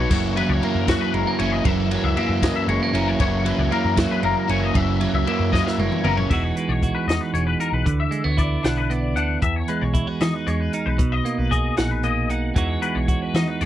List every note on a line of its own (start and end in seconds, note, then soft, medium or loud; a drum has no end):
0.00 0.11 B1 medium
0.00 0.10 B2 medium
0.00 0.12 B2 medium
0.00 0.11 F#3 medium
0.00 0.36 F#3 medium
0.00 0.10 C#5 medium
0.10 0.41 F#1 loud
0.10 0.65 F#2 medium
0.10 1.65 F#2 medium
0.10 0.60 C#3 loud
0.10 0.38 E3 medium
0.10 0.36 A#3 loud
0.10 0.35 E4 loud
0.10 0.36 C#5 loud
0.10 kick loud
0.10 crash loud
0.35 0.62 E3 medium
0.35 0.88 F#3 medium
0.35 0.63 A#3 medium
0.35 0.64 E4 medium
0.35 0.49 B4 medium
0.35 ride medium
0.49 0.59 C#2 medium
0.49 0.62 C#5 medium
0.61 0.88 C#3 medium
0.61 0.88 E3 medium
0.61 0.87 A#3 medium
0.61 1.13 A#3 medium
0.61 0.86 E4 medium
0.61 0.88 A#4 medium
0.61 ride medium
0.75 0.95 F#2 loud
0.87 1.64 F#2 medium
0.87 1.64 C#3 medium
0.87 1.42 E3 medium
0.87 1.91 F#3 medium
0.87 1.40 A#3 medium
0.87 1.39 E4 medium
0.87 1.01 F#4 medium
0.87 kick medium
0.87 snare loud
0.87 ride medium
1.01 1.14 B4 medium
1.14 1.24 F#1 medium
1.14 1.27 G#3 medium
1.14 1.38 A#4 medium
1.14 ride medium
1.27 1.66 A#3 medium
1.39 1.60 F#1 medium
1.39 1.66 E3 medium
1.39 1.66 A#3 medium
1.39 2.94 C#4 medium
1.39 1.67 E4 medium
1.39 1.52 C#5 medium
1.39 ride medium
1.52 1.65 D#5 medium
1.64 1.96 F#1 loud
1.64 2.20 F#2 loud
1.64 3.20 F#2 medium
1.64 2.15 C#3 loud
1.64 1.94 E3 loud
1.64 1.92 A#3 loud
1.64 1.91 E4 loud
1.64 1.90 E5 medium
1.64 kick loud
1.64 ride loud
1.90 2.43 F#3 medium
1.90 2.18 A#3 medium
1.90 2.19 E4 medium
1.90 2.04 C#5 medium
1.90 ride medium
1.94 2.17 E3 medium
2.04 2.14 C#2 medium
2.04 2.16 E5 medium
2.16 2.43 C#3 medium
2.16 2.43 E3 medium
2.16 2.68 A#3 medium
2.16 2.43 A#3 medium
2.16 2.42 E4 medium
2.16 2.43 E5 medium
2.16 ride medium
2.29 2.49 F#2 medium
2.42 3.19 F#2 medium
2.42 3.19 C#3 medium
2.42 2.96 E3 medium
2.42 3.44 F#3 medium
2.42 2.95 A#3 medium
2.42 2.93 E4 medium
2.42 2.55 D#5 medium
2.42 kick medium
2.42 snare loud
2.42 ride loud
2.56 2.68 E5 medium
2.68 2.78 F#1 loud
2.68 2.83 G#3 medium
2.68 2.95 C#5 medium
2.68 ride medium
2.83 3.21 A#3 medium
2.93 3.14 F#1 medium
2.93 3.20 E3 medium
2.93 3.21 A#3 medium
2.93 4.49 C#4 medium
2.93 3.21 E4 medium
2.93 3.08 A#4 medium
2.93 ride medium
3.08 3.20 C#5 medium
3.19 3.50 F#1 loud
3.19 3.75 F#2 loud
3.19 4.72 F#2 medium
3.19 3.69 C#3 loud
3.19 3.47 E3 loud
3.19 3.46 A#3 loud
3.19 3.44 E4 loud
3.19 3.47 C#5 loud
3.19 kick loud
3.19 ride loud
3.45 3.71 E3 medium
3.45 3.96 F#3 medium
3.45 3.72 A#3 medium
3.45 3.73 E4 medium
3.45 3.59 B4 medium
3.45 ride medium
3.59 3.69 C#2 medium
3.59 3.72 C#5 medium
3.70 3.98 C#3 medium
3.70 3.98 E3 medium
3.70 4.22 A#3 medium
3.70 3.96 A#3 medium
3.70 3.96 E4 medium
3.70 3.98 A#4 medium
3.70 ride medium
3.85 4.05 F#2 medium
3.96 4.73 F#2 medium
3.96 4.74 C#3 medium
3.96 4.50 E3 medium
3.96 5.00 F#3 medium
3.96 4.49 A#3 medium
3.96 4.47 E4 medium
3.96 4.11 F#4 medium
3.96 kick medium
3.96 snare loud
3.96 ride loud
4.11 4.24 B4 medium
4.23 4.33 F#1 medium
4.23 4.72 A#3 medium
4.23 4.50 A#4 medium
4.23 ride medium
4.48 4.69 F#1 medium
4.48 4.74 E3 medium
4.48 4.75 A#3 medium
4.48 4.72 C#4 medium
4.48 4.75 E4 medium
4.48 4.63 C#5 medium
4.48 ride medium
4.63 4.76 D#5 medium
4.74 5.05 F#1 loud
4.74 5.26 F#2 medium
4.74 6.27 F#2 medium
4.74 5.24 C#3 medium
4.74 5.02 E3 medium
4.74 5.01 A#3 loud
4.74 4.99 E4 loud
4.74 5.02 E5 medium
4.74 kick loud
4.74 ride medium
5.01 5.26 E3 medium
5.01 5.51 F#3 medium
5.01 5.27 A#3 medium
5.01 5.28 E4 medium
5.01 5.14 C#5 medium
5.01 ride medium
5.14 5.24 C#2 medium
5.14 5.26 E5 medium
5.26 5.53 C#3 medium
5.26 5.53 E3 medium
5.26 5.78 A#3 medium
5.26 5.52 A#3 medium
5.26 5.51 E4 medium
5.26 5.52 E5 medium
5.26 ride medium
5.40 5.60 F#2 medium
5.52 6.30 F#2 medium
5.52 6.30 C#3 medium
5.52 6.06 E3 medium
5.52 6.27 F#3 medium
5.52 6.04 A#3 medium
5.52 6.03 E4 medium
5.52 5.66 D#5 medium
5.52 kick medium
5.52 snare medium
5.66 5.79 E5 medium
5.66 snare medium
5.78 5.89 F#1 medium
5.78 6.28 A#3 medium
5.78 6.05 C#5 medium
5.78 high tom medium
5.92 mid tom medium
6.04 6.25 F#1 medium
6.04 6.30 E3 medium
6.04 6.29 A#3 medium
6.04 6.17 B3 medium
6.04 6.29 E4 medium
6.04 6.17 A#4 medium
6.04 mid tom loud
6.17 6.30 C#4 soft
6.17 6.30 C#5 medium
6.17 floor tom medium
6.30 6.51 E1 medium
6.30 7.86 E2 medium
6.30 9.43 E3 medium
6.30 6.57 G#3 medium
6.30 7.08 D#4 medium
6.30 6.83 F#4 medium
6.30 6.43 E5 medium
6.30 kick loud
6.30 crash medium
6.43 6.56 C#5 medium
6.56 7.34 G#3 medium
6.56 6.69 B4 medium
6.56 closed hi-hat medium
6.69 6.89 B1 medium
6.69 6.94 C#5 medium
6.83 8.14 F#4 medium
6.83 kick medium
6.83 closed hi-hat medium
6.95 7.07 B4 medium
7.07 7.18 E2 medium
7.07 7.59 D#4 medium
7.07 7.21 D#5 medium
7.07 snare loud
7.07 closed hi-hat medium
7.21 7.33 B4 medium
7.33 7.54 E1 loud
7.33 7.87 G#3 medium
7.33 7.46 C#5 medium
7.33 closed hi-hat medium
7.47 7.60 B4 medium
7.60 7.83 D#4 medium
7.60 7.73 A#4 medium
7.60 closed hi-hat medium
7.73 7.83 B1 medium
7.73 7.99 B4 medium
7.86 8.06 D2 medium
7.86 9.39 D3 medium
7.86 kick loud
7.86 closed hi-hat medium
8.00 8.25 E5 medium
8.11 8.24 G#3 medium
8.11 closed hi-hat medium
8.24 8.55 D2 medium
8.24 8.89 B3 soft
8.24 8.38 C#5 medium
8.37 9.92 E4 medium
8.37 8.64 D5 medium
8.37 kick medium
8.37 closed hi-hat medium
8.63 9.16 B1 loud
8.63 9.16 D4 medium
8.63 8.77 F#5 medium
8.63 snare loud
8.63 closed hi-hat medium
8.78 8.90 B4 medium
8.90 9.69 B3 medium
8.90 9.16 D5 medium
8.90 closed hi-hat medium
9.16 9.36 D2 medium
9.16 9.39 D4 medium
9.16 9.42 F#5 medium
9.16 closed hi-hat medium
9.42 10.99 E2 medium
9.42 9.63 E2 medium
9.42 9.56 E5 medium
9.42 kick loud
9.42 closed hi-hat medium
9.56 9.69 C#5 medium
9.68 10.46 G#3 medium
9.68 9.81 B4 medium
9.68 closed hi-hat medium
9.81 10.02 B1 medium
9.81 10.07 C#5 medium
9.94 10.07 E4 medium
9.94 kick medium
9.94 closed hi-hat medium
10.07 10.99 F#4 soft
10.07 10.21 B4 medium
10.21 10.31 E3 medium
10.21 10.74 D#4 medium
10.21 10.34 D#5 medium
10.21 snare loud
10.21 closed hi-hat medium
10.34 10.47 B4 medium
10.47 10.67 E2 medium
10.47 10.99 G#3 medium
10.47 10.60 C#5 medium
10.47 closed hi-hat medium
10.60 10.73 B4 medium
10.73 11.77 D#4 medium
10.73 10.86 A#4 medium
10.73 closed hi-hat medium
10.86 10.96 B1 medium
10.86 11.12 B4 medium
10.98 11.19 B1 medium
10.98 12.55 B2 medium
10.98 kick loud
10.98 closed hi-hat medium
11.12 11.38 D#5 medium
11.25 12.02 A#3 medium
11.25 closed hi-hat medium
11.38 11.69 B1 medium
11.38 11.51 B4 medium
11.51 12.53 G#4 medium
11.51 11.77 D#5 medium
11.51 kick medium
11.51 closed hi-hat medium
11.77 12.30 A#1 medium
11.77 12.29 D#4 medium
11.77 11.90 F#5 medium
11.77 snare loud
11.77 closed hi-hat medium
11.91 12.04 B4 medium
12.03 12.53 A#3 medium
12.03 12.30 D#5 medium
12.03 closed hi-hat medium
12.30 12.50 B1 medium
12.30 12.53 D#4 medium
12.30 12.56 F#5 medium
12.30 closed hi-hat medium
12.55 13.66 E2 medium
12.55 12.76 E2 medium
12.55 13.66 E3 medium
12.55 12.80 G#3 medium
12.55 13.34 D#4 medium
12.55 13.08 F#4 medium
12.55 12.69 E5 medium
12.55 kick loud
12.55 closed hi-hat medium
12.69 12.82 C#5 medium
12.82 13.60 G#3 medium
12.82 12.95 B4 medium
12.82 closed hi-hat medium
12.95 13.16 B1 medium
12.95 13.22 C#5 medium
13.08 13.66 F#4 medium
13.08 kick medium
13.08 closed hi-hat medium
13.22 13.35 B4 medium
13.34 13.44 E3 medium
13.34 13.66 D#4 medium
13.34 13.48 D#5 medium
13.34 snare loud
13.34 closed hi-hat medium
13.48 13.61 B4 medium
13.61 13.66 E2 medium
13.61 13.66 G#3 medium
13.61 13.66 C#5 medium
13.61 closed hi-hat medium